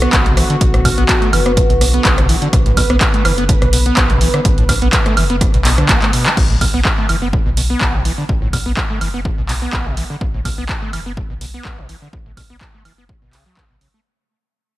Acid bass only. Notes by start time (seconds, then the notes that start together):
0.02 B3
0.26 B2
0.37 E3
0.50 D3
0.61 B2
0.74 A2
0.85 B2
0.98 B3
1.22 A3
1.33 E3
1.46 B3
1.57 A2
1.70 B2
1.81 B2
1.94 B3
2.18 B2
2.29 E3
2.42 D3
2.53 B2
2.66 A2
2.77 B2
2.90 B3
3.14 A3
3.25 E3
3.38 B3
3.49 A2
3.62 B2
3.73 B2
3.86 B3
4.10 B2
4.21 E3
4.34 D3
4.45 B2
4.58 A2
4.69 B2
4.82 B3
5.06 A3
5.17 E3
5.30 B3
5.41 A2
5.54 B2
5.65 B2
5.78 D3
5.89 B3
6.02 A3
6.13 B2
6.26 B3
6.37 B2
6.50 A2
6.61 B2
6.74 B3
6.98 A3
7.09 E3
7.22 B3
7.33 A2
7.46 B2
7.57 B2
7.70 B3
7.94 B2
8.05 E3
8.18 D3
8.29 B2
8.42 A2
8.53 B2
8.66 B3
8.90 A3
9.01 E3
9.14 B3
9.25 A2
9.38 B2
9.49 B2
9.62 B3
9.86 B2
9.97 E3
10.10 D3
10.21 B2
10.34 A2
10.45 B2
10.58 B3
10.82 A3
10.93 E3
11.06 B3
11.17 A2
11.30 B2
11.41 B2
11.54 B3
11.78 B2
11.89 E3
12.02 D3
12.13 B2
12.26 A2
12.37 B2
12.50 B3
12.74 A3
12.85 E3
12.98 B3
13.09 A2
13.22 B2
13.33 C#3
13.46 F#3
13.57 C#3
13.70 B2
13.81 C#3
13.94 A3